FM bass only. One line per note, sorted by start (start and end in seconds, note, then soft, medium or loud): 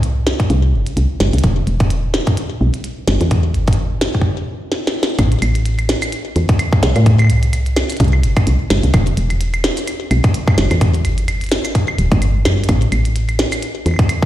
0.00 0.34 C2 medium
0.50 0.75 C2 loud
0.73 0.83 G1 loud
0.97 1.06 C2 medium
1.20 1.30 G1 loud
1.33 1.41 C2 medium
1.44 1.61 E1 loud
1.67 2.21 E1 medium
2.61 2.70 B1 medium
3.08 3.17 G1 medium
3.21 3.56 E2 loud
3.55 4.09 G1 medium
5.19 5.36 A1 loud
5.42 5.96 A1 medium
6.36 6.45 E2 medium
6.83 6.92 C2 loud
6.96 7.31 A2 medium
7.30 7.84 C2 medium
8.00 8.25 C2 loud
8.24 8.33 G1 loud
8.47 8.56 C2 medium
8.70 8.80 G1 loud
8.84 8.91 C2 medium
8.94 9.11 E1 loud
9.17 9.71 E1 medium
10.11 10.20 B1 medium
10.58 10.67 G1 loud
10.71 11.06 E2 loud
11.05 11.59 G1 medium
11.99 12.08 D1 medium
12.12 12.47 G1 loud
12.45 12.63 G2 medium
12.69 12.86 A1 loud
12.92 13.46 A1 medium
13.86 13.95 E2 medium